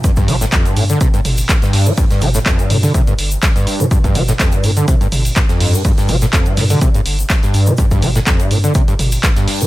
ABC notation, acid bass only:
X:1
M:4/4
L:1/16
Q:"Swing 16ths" 1/4=124
K:Gm
V:1 name="Acid bass" clef=bass
G,, G,, G, A,, F,, G,, B,, D, C, G,, z3 G,,2 G, | G,, G,, G, A,, F,, G,, B,, D, C, G,, z3 G,,2 G, | G,, G,, G, A,, F,, G,, B,, D, C, G,, z2 G,, F,,2 G,, | G,, G,, G, A,, F,, G,, B,, D, C, G,, z3 G,,2 G, |
G,, G,, G, A,, F,, G,, B,, D, C, G,, z3 G,,2 G, |]